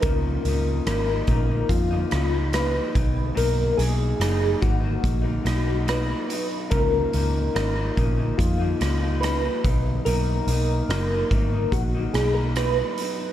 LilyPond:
<<
  \new Staff \with { instrumentName = "Synth keys" } { \time 4/4 \key ces \lydian \tempo 4 = 72 bes'4 bes'4 f'4 ces''4 | bes'8 aes'4 ges'4. ces''4 | bes'4 bes'4 f'4 ces''4 | bes'4 bes'4 ges'8 aes'16 bes'16 ces''4 | }
  \new Staff \with { instrumentName = "Clean electric guitar" } { \time 4/4 \key ces \lydian <des f bes ees'>8 <des f bes ees'>8 <des f bes ees'>16 <f bes ees'>16 <des f bes ees'>16 <f bes ees'>8 <f bes ees'>16 <des f bes ees'>16 <f bes ees'>16 <des f bes ees'>16 <f bes ees'>16 <ces ges ees'>8 | <ces ges bes ees'>8 <ces ges bes ees'>8 <ces ges bes ees'>16 <ges bes ees'>16 <ces ges bes ees'>16 <ges bes ees'>8 <ges bes ees'>16 <ces ges bes ees'>16 <ges bes ees'>16 <ces ges bes ees'>16 <ges bes ees'>16 <ces ges ees'>8 | <des f bes ees'>8 <des f bes ees'>8 <des f bes ees'>16 <f bes ees'>16 <des f bes ees'>16 <f bes ees'>8 <f bes ees'>16 <des f bes ees'>16 <f bes ees'>16 <des f bes ees'>16 <f bes ees'>16 <ces ges ees'>8 | <ces ges bes ees'>8 <ces ges bes ees'>8 <ces ges bes ees'>16 <ges bes ees'>16 <ces ges bes ees'>16 <ges bes ees'>8 <ges bes ees'>16 <ces ges bes ees'>16 <ges bes ees'>16 <ces ges bes ees'>16 <ges bes ees'>16 <ces ges ees'>8 | }
  \new Staff \with { instrumentName = "Picked electric bass" } { \clef bass \time 4/4 \key ces \lydian des,8 des,8 aes,,8 bes,,8 f,8 des,4 ces,8 | ces,8 ces,8 ges,,8 aes,,8 bes,,8 ces,4 r8 | des,8 des,8 aes,,8 bes,,8 f,8 des,4 ces,8 | ces,8 ces,8 ges,,8 aes,,8 bes,,8 ces,4 r8 | }
  \new DrumStaff \with { instrumentName = "Drums" } \drummode { \time 4/4 <hh bd>8 hh8 <hh ss>8 <hh bd>8 <hh bd>8 <hh ss>8 <hh ss>8 <hh bd>8 | hh8 hh8 <hh ss>8 <hh bd>8 <hh bd>8 <hh ss>8 <hh ss>8 hh8 | <hh bd>8 hh8 <hh ss>8 <hh bd>8 <hh bd>8 <hh ss>8 <hh ss>8 <hh bd>8 | hh8 hh8 <hh ss>8 <hh bd>8 <hh bd>8 <hh ss>8 <hh ss>8 hh8 | }
>>